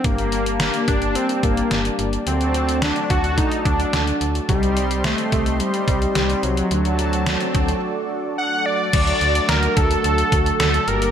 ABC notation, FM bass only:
X:1
M:4/4
L:1/16
Q:1/4=108
K:Dphr
V:1 name="FM bass" clef=bass
G,,,4- G,,, z G,,,3 z G,,,2 G,,,2 G,,,2 | D,,4- D,, z D,,3 z D,,2 D,,2 D,,2 | C,,4- C,, z C,,3 z C,,2 C,,2 C,,2 | D,,4- D,, z D,,2 z8 |
D,,2 D,,2 D,,2 D,,2 D,,2 D,,2 D,,2 G,,,2 |]